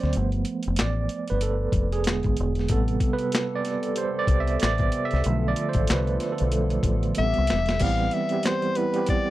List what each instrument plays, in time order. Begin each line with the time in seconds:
Already playing: tine electric piano F#3 A#3 C4 C5 D5
0.03 fingered electric bass D2, snare
0.13 fingered electric bass G1, tine electric piano F3 A3 B3, closed hi-hat
0.32 closed hi-hat
0.45 closed hi-hat
0.63 closed hi-hat
0.67 fingered electric bass F1
0.76 tine electric piano D5, snare, clap, closed hi-hat
0.81 fingered electric bass A1
1.09 closed hi-hat
1.28 fingered electric bass G1, tine electric piano B4, closed hi-hat
1.41 tine electric piano A4, closed hi-hat
1.72 fingered electric bass F1, kick, closed hi-hat
1.92 tine electric piano G#4, closed hi-hat
2.04 tine electric piano D3 G#3 B3, snare, closed hi-hat
2.08 fingered electric bass E1, clap
2.23 fingered electric bass G#1, kick, closed hi-hat
2.37 fingered electric bass E1, closed hi-hat
2.55 closed hi-hat
2.59 snare
2.68 fingered electric bass A1, analog synth pad C3 B3 G4 A4, tine electric piano C3 G3 B3 A4, kick, closed hi-hat
2.88 closed hi-hat
3.00 kick, closed hi-hat
3.13 tine electric piano B4
3.19 closed hi-hat
3.32 snare, clap, closed hi-hat
3.55 tine electric piano D5
3.65 snare, closed hi-hat
3.83 closed hi-hat
3.96 tine electric piano C5, closed hi-hat
4.19 tine electric piano D5
4.27 fingered electric bass C2, kick, closed hi-hat
4.40 tine electric piano E5
4.47 closed hi-hat
4.60 fingered electric bass A1, tine electric piano D5, snare, closed hi-hat
4.64 clap
4.78 kick, closed hi-hat
4.92 closed hi-hat
5.05 tine electric piano E5
5.11 fingered electric bass C2, closed hi-hat
5.15 snare
5.24 fingered electric bass B1, analog synth pad D3 F4 A4, tine electric piano D3 F3 A3, closed hi-hat
5.48 tine electric piano D5
5.56 closed hi-hat
5.69 tine electric piano C5
5.73 fingered electric bass A1, kick, closed hi-hat
5.87 fingered electric bass C2, tine electric piano B4, snare, clap, closed hi-hat
6.07 closed hi-hat
6.20 snare, closed hi-hat
6.32 tine electric piano A4
6.38 fingered electric bass B1, closed hi-hat
6.52 tine electric piano D3 F3 A3, closed hi-hat
6.70 closed hi-hat
6.83 fingered electric bass A1, kick, closed hi-hat
7.03 closed hi-hat
7.15 analog synth pad C3 B3 G4, tine electric piano C3 G3 B3, soprano saxophone E5, closed hi-hat
7.19 fingered electric bass A1
7.34 closed hi-hat
7.38 fingered electric bass C2
7.47 snare, closed hi-hat
7.52 fingered electric bass E1
7.66 snare, closed hi-hat
7.80 fingered electric bass A1, tine electric piano E3 G3 B3 C4, soprano saxophone F5, kick, closed hi-hat, crash
8.11 soprano saxophone E5, closed hi-hat
8.29 tine electric piano G3 B3 C4, closed hi-hat
8.34 tine electric piano G4
8.43 soprano saxophone C5, snare, clap, closed hi-hat
8.62 closed hi-hat
8.75 tine electric piano G3 B3 C4 E4, soprano saxophone B4, closed hi-hat
8.94 tine electric piano G3 B3 C4 G4, closed hi-hat
9.06 soprano saxophone D5, kick, closed hi-hat